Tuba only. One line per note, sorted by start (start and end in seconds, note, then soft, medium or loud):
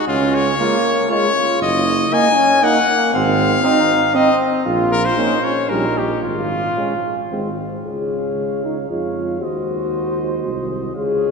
0.08 0.51 C#2 loud
1.61 2.04 F#1 loud
3.14 3.56 G#1 loud
4.66 5.09 A#1 loud
5.70 6.14 A#1 medium
6.23 6.68 G#1 medium
7.32 7.77 G#1 medium
7.87 8.86 C#2 soft
8.90 9.43 F2 soft
9.41 10.46 D#2 medium
10.45 10.96 C2 medium
10.97 11.31 C#2 medium